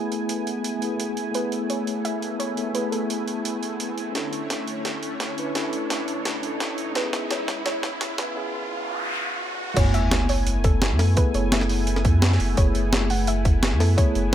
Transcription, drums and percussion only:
0.12 closed hi-hat medium
0.29 closed hi-hat medium
0.47 closed hi-hat medium
0.64 closed hi-hat medium
0.82 closed hi-hat medium
1.00 closed hi-hat medium
1.17 closed hi-hat medium
1.34 closed hi-hat medium
1.52 closed hi-hat medium
1.70 closed hi-hat medium
1.87 closed hi-hat medium
2.05 closed hi-hat medium
2.22 closed hi-hat medium
2.40 closed hi-hat medium
2.57 closed hi-hat medium
2.75 closed hi-hat medium
2.92 closed hi-hat medium
3.10 closed hi-hat medium
3.28 closed hi-hat medium
3.45 closed hi-hat medium
3.63 closed hi-hat medium
3.80 closed hi-hat medium
3.98 closed hi-hat medium
4.15 snare soft
4.15 closed hi-hat medium
4.33 closed hi-hat medium
4.50 snare soft
4.50 closed hi-hat medium
4.67 closed hi-hat medium
4.85 snare medium
4.85 closed hi-hat medium
5.03 closed hi-hat medium
5.20 snare medium
5.20 closed hi-hat medium
5.38 closed hi-hat medium
5.55 snare medium
5.55 closed hi-hat medium
5.73 closed hi-hat medium
5.90 snare medium
5.90 closed hi-hat medium
6.08 closed hi-hat medium
6.25 snare medium
6.25 closed hi-hat medium
6.43 closed hi-hat medium
6.60 snare medium
6.60 closed hi-hat medium
6.78 closed hi-hat medium
6.95 snare medium
6.95 closed hi-hat medium
7.13 snare medium
7.13 closed hi-hat medium
7.31 snare medium
7.31 closed hi-hat loud
7.48 snare medium
7.48 closed hi-hat medium
7.66 snare medium
7.66 closed hi-hat medium
7.83 snare medium
7.83 closed hi-hat medium
8.01 snare medium
8.01 closed hi-hat medium
8.18 snare medium
8.18 closed hi-hat medium
9.77 kick loud
9.77 closed hi-hat loud
9.77 crash loud
9.94 closed hi-hat medium
10.11 snare loud
10.11 closed hi-hat loud
10.29 open hi-hat medium
10.47 closed hi-hat loud
10.64 kick loud
10.64 closed hi-hat medium
10.82 snare loud
10.82 closed hi-hat loud
10.99 snare medium
10.99 open hi-hat medium
11.17 kick loud
11.17 closed hi-hat medium
11.34 closed hi-hat medium
11.52 snare loud
11.52 closed hi-hat loud
11.61 snare medium
11.69 open hi-hat medium
11.87 closed hi-hat medium
11.96 snare medium
12.05 kick loud
12.05 closed hi-hat medium
12.22 snare loud
12.22 closed hi-hat medium
12.32 snare soft
12.40 open hi-hat medium
12.57 kick loud
12.57 closed hi-hat medium
12.75 closed hi-hat medium
12.93 snare loud
12.93 closed hi-hat medium
13.10 open hi-hat medium
13.27 closed hi-hat medium
13.45 kick loud
13.45 closed hi-hat medium
13.63 snare loud
13.63 closed hi-hat medium
13.80 snare medium
13.80 open hi-hat medium
13.98 kick loud
13.98 closed hi-hat medium
14.15 closed hi-hat medium

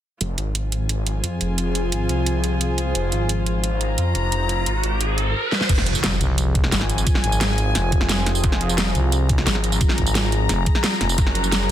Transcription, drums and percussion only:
0.21 closed hi-hat medium
0.38 closed hi-hat medium
0.55 closed hi-hat medium
0.72 closed hi-hat medium
0.89 closed hi-hat medium
1.07 closed hi-hat medium
1.24 closed hi-hat medium
1.41 closed hi-hat medium
1.58 closed hi-hat medium
1.75 closed hi-hat medium
1.92 closed hi-hat medium
2.09 closed hi-hat medium
2.26 closed hi-hat medium
2.44 closed hi-hat medium
2.61 closed hi-hat medium
2.78 closed hi-hat medium
2.95 closed hi-hat medium
3.12 closed hi-hat medium
3.29 closed hi-hat medium
3.46 closed hi-hat medium
3.64 closed hi-hat medium
3.81 closed hi-hat medium
3.98 closed hi-hat medium
4.15 closed hi-hat medium
4.32 closed hi-hat medium
4.49 closed hi-hat medium
4.66 closed hi-hat medium
4.84 closed hi-hat medium
5.01 closed hi-hat medium
5.18 closed hi-hat medium
5.52 snare medium
5.61 snare medium
5.69 kick loud
5.69 closed hi-hat medium
5.69 tambourine soft
5.69 crash loud
5.78 snare soft
5.86 closed hi-hat medium
5.95 tambourine medium
6.04 snare loud
6.04 closed hi-hat loud
6.04 tambourine soft
6.21 closed hi-hat medium
6.21 tambourine soft
6.38 closed hi-hat loud
6.38 tambourine soft
6.55 kick loud
6.55 closed hi-hat medium
6.64 snare medium
6.72 snare loud
6.72 closed hi-hat medium
6.72 tambourine soft
6.81 snare medium
6.89 closed hi-hat medium
6.89 tambourine soft
6.98 tambourine medium
7.07 kick loud
7.07 closed hi-hat medium
7.07 tambourine soft
7.15 snare soft
7.15 snare medium
7.24 closed hi-hat medium
7.32 tambourine medium
7.41 snare loud
7.41 closed hi-hat medium
7.41 tambourine soft
7.58 closed hi-hat medium
7.58 tambourine soft
7.75 snare medium
7.75 closed hi-hat medium
7.75 tambourine soft
7.92 kick loud
7.92 closed hi-hat medium
8.01 snare medium
8.09 snare loud
8.09 closed hi-hat loud
8.09 tambourine soft
8.26 snare soft
8.26 closed hi-hat medium
8.26 tambourine soft
8.35 tambourine medium
8.44 kick loud
8.44 closed hi-hat medium
8.44 tambourine soft
8.52 snare medium
8.61 closed hi-hat medium
8.69 tambourine medium
8.78 snare loud
8.78 closed hi-hat medium
8.78 tambourine soft
8.95 closed hi-hat medium
8.95 tambourine soft
9.12 closed hi-hat loud
9.12 tambourine soft
9.29 kick loud
9.29 closed hi-hat medium
9.38 snare soft
9.47 snare loud
9.47 closed hi-hat medium
9.47 tambourine soft
9.55 snare soft
9.64 closed hi-hat medium
9.64 tambourine soft
9.72 tambourine medium
9.81 kick loud
9.81 closed hi-hat medium
9.81 tambourine soft
9.89 snare soft
9.98 kick medium
9.98 closed hi-hat medium
10.07 tambourine medium
10.15 snare loud
10.15 closed hi-hat medium
10.15 tambourine soft
10.32 closed hi-hat medium
10.32 tambourine soft
10.49 snare soft
10.49 closed hi-hat medium
10.49 tambourine soft
10.66 kick loud
10.66 closed hi-hat medium
10.75 snare soft
10.84 snare loud
10.84 closed hi-hat medium
10.84 tambourine soft
11.01 snare soft
11.01 closed hi-hat medium
11.01 tambourine soft
11.09 tambourine medium
11.18 kick loud
11.18 closed hi-hat medium
11.18 tambourine soft
11.27 snare soft
11.35 closed hi-hat medium
11.44 tambourine medium
11.52 snare loud
11.52 closed hi-hat medium
11.52 tambourine soft

